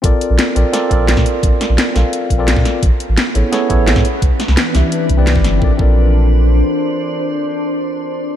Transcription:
<<
  \new Staff \with { instrumentName = "Tine electric piano" } { \time 4/4 \key bes \major \tempo 4 = 172 <c' f' a' bes' d''>4. <c' f' a' bes' d''>8 <c' f' a' bes' d''>8 <c' f' a' bes' d''>4.~ | <c' f' a' bes' d''>4. <c' f' a' bes' f''>4~ <c' f' a' bes' f''>16 <c' f' a' bes' d''>16 r4 | r4. <b e' gis' a' cis''>8 <b e' gis' a' cis''>8 <b e' gis' a' cis''>4 r8 | r4. <c' e' g' b' e''>4~ <c' e' g' b' e''>16 <c' e' g' b' d''>16 r4 |
<c' f' a' bes' d''>16 r16 <c' f' a' bes' d''>2.~ <c' f' a' bes' d''>8~ | <c' f' a' bes' d''>1 | }
  \new Staff \with { instrumentName = "Ambient pad" } { \time 4/4 \key bes \major << { r1 | r1 | b'1~ | b'1 |
<d' c''>1~ | <d' c''>1 | } \\ { r1 | r1 | r2. r8 <e d'>8~ | <e d'>1 |
r1 | r1 | } >> }
  \new Staff \with { instrumentName = "Sub bass" } { \clef bass \time 4/4 \key bes \major bes,,16 r8 bes,,16 r8 bes,,16 r8. bes,,8. bes,16 r8 | bes,,16 r8 bes,,16 r8 bes,,16 r8. bes,,8. bes,16 r8 | a,,16 r8 a,,16 r8 a,,16 r8. a,,8. a,16 r8 | c,16 r8 c,16 r8 c,16 r8. c,8. g,,8. |
bes,,16 r16 bes,,2~ bes,,8 r4 | r1 | }
  \new DrumStaff \with { instrumentName = "Drums" } \drummode { \time 4/4 <hh bd>8 hh8 <hh sn>8 hh8 <hh sn>8 <hh bd>8 <hh sn>16 <bd sn>16 hh8 | <hh bd>8 <hh sn>8 <hh sn>8 <hho sn>8 hh8 <hh bd>8 <hh sn>16 <bd sn>16 <hh sn>8 | <hh bd>8 hh8 <hh sn>8 hh8 <hh sn>8 <hh bd>8 <hh sn>16 <bd sn>16 hh8 | <hh bd>8 <hh sn>16 sn16 <hh sn>8 <hho sn>8 hh8 <hh bd>8 <hh sn>16 <bd sn>16 <hh sn>8 |
bd8 bd8 r4 r4 r4 | r4 r4 r4 r4 | }
>>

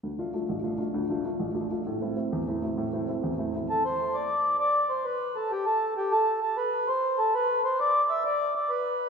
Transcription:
<<
  \new Staff \with { instrumentName = "Accordion" } { \time 12/8 \key d \dorian \tempo 4. = 132 r1. | r1. | a'8 c''4 d''4. d''4 c''8 b'4 a'8 | g'8 a'4 g'8 a'4 a'8 b'4 c''4 a'8 |
b'4 c''8 d''4 e''8 d''4 d''8 b'4. | }
  \new Staff \with { instrumentName = "Upright piano" } { \time 12/8 \key d \dorian d,8 <a d' f'>8 <a d' f'>8 a,,8 <a d' f'>8 <a d' f'>8 d,8 <a d' f'>8 <a d' f'>8 a,,8 <a d' f'>8 <a d' f'>8 | a,8 <a c' e'>8 <a c' e'>8 e,8 <a c' e'>8 <a c' e'>8 a,8 <a c' e'>8 <a c' e'>8 e,8 <a c' e'>8 <a c' e'>8 | r1. | r1. |
r1. | }
>>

